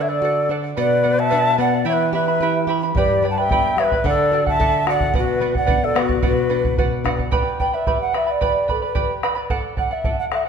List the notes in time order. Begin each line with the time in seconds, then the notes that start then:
Already playing: D3 D4
0.01 C#5 E5
0.08 A4 D5 F#5
0.22 F#4 A4 D5 F#5
0.49 D4 A4 D5 F#5
0.64 D5 F#5
0.77 B2 B4 D5 F#5
1.03 B3 B4 D5 F#5
1.17 D5 E5 F#5 A5
1.30 D4 B4 D5 F#5
1.58 B3 B4 D5 F#5
1.73 D5 F#5
1.85 E3 E4 G4 C#5 E5 G5 B5
1.93 B4
2.13 E4 G4 B4 E5 G5 B5
2.28 E4 E5 B5
2.41 E4 G4 B4 E5 G5 B5
2.67 E4 G4 E5 G5 B5
2.83 E4 E5 B5
2.95 G2 G4 B4 D5 G5 B5, bombo low
3.22 G3 B4 D5 G5 B5
3.30 F#5 A5
3.38 B4 D5 E5 G5 B5
3.49 B3 G4 B4 D5 G5 B5, bombo low
3.76 G3 B4 C#5 D5 E5 G5, bombo rim
3.80 B4 B5
3.92 B4 D5 B5, bombo low
4.04 D3 A4 D5 F#5, bombo low
4.09 A4
4.32 F#4 A4 D5 F#5
4.46 D5 E5 F#5 A5, bombo low
4.60 A4 D5 F#5, bombo low
4.87 F#4 A4 D5 F#5, bombo rim
5.00 D5 F#5, bombo low
5.14 B2 B4 D5 F#5, bombo low
5.18 F#4 B4
5.40 B3 B4 D5 F#5
5.54 D5 F#5, bombo low
5.66 D4 B4 D5 F#5, bombo low
5.84 A4 D5
5.94 B3 B4 D5 F#5, bombo rim
5.99 F#4 G4
6.08 D5 F#5, bombo low
6.22 B2 F#4 B4 D5 F#5, bombo low
6.49 D4 B4 D5 F#5
6.64 D5 F#5, bombo low
6.78 F#4 B4 D5 F#5, bombo low
7.04 D4 B4 D5 F#5, bombo rim, bombo low
7.19 D5 F#5, bombo low
7.31 G4 B4 D5 G5 B5, bombo low
7.60 B4 D5 G5 B5, bombo low
7.73 B4 D5 E5 B5
7.87 G4 B4 D5 G5 B5, bombo low
8.01 F#5
8.13 B4 D5 E5 G5 B5, bombo rim
8.27 B4 D5 B5
8.31 D5
8.41 G4 B4 D5 G5 B5, bombo low
8.68 A4 B4 D5 G5 B5, bombo low
8.82 B4 D5 B5
8.95 G4 B4 D5 G5 B5, bombo low
9.23 B4 D5 G5 B5, bombo rim
9.35 B4 D5 B5
9.50 A4 D5 F#5, bombo low
9.77 A4 D5 F#5, bombo low
9.91 D5 E5 F#5
10.04 A4 D5 F#5, bombo low
10.19 F#5
10.31 A4 D5 E5 F#5, bombo rim
10.45 F#5